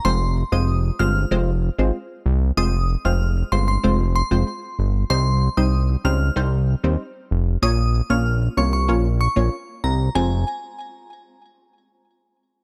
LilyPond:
<<
  \new Staff \with { instrumentName = "Synth bell" } { \time 4/4 \key f \minor \tempo 4 = 95 c'''8 r16 ees'''16 r8 f'''16 r2 r16 | ees'''16 r8 f'''16 r8 c'''16 c'''16 r8 c'''16 r4 r16 | c'''8 r16 ees'''16 r8 f'''16 r2 r16 | ees'''16 r8 f'''16 r8 des'''16 des'''16 r8 des'''16 r8. bes''16 r16 |
aes''8 r2. r8 | }
  \new Staff \with { instrumentName = "Synth stab" } { \time 4/4 \key f \minor <aes c' f' c''>16 r8 <aes c' f' c''>8. <aes c' f' c''>8 <aes c' f' c''>16 r8 <aes c' f' c''>16 r4 | <aes c' f' c''>16 r8 <aes c' f' c''>8. <aes c' f' c''>8 <aes c' f' c''>16 r8 <aes c' f' c''>16 r4 | <g c' ees' c''>16 r8 <g c' ees' c''>8. <g c' ees' c''>8 <g c' ees' c''>16 r8 <g c' ees' c''>16 r4 | <bes des' f' des''>16 r8 <bes des' f' des''>8. <bes des' f' des''>8 <bes des' f' des''>16 r8 <bes des' f' des''>16 r4 |
<aes c' f' c''>8 r2. r8 | }
  \new Staff \with { instrumentName = "Analog synth bass" } { \clef bass \time 4/4 \key f \minor f,,8. f,,8. g,,8 f,,8. aes,,16 r8 c,8 | f,,8. f,,8. g,,8 f,,8. f,,16 r8 g,,8 | c,8. c,8. des,8 c,8. ees,16 r8 f,,8 | bes,,8. bes,,8. c,8 bes,,8. bes,,16 r8 c,8 |
f,,8 r2. r8 | }
>>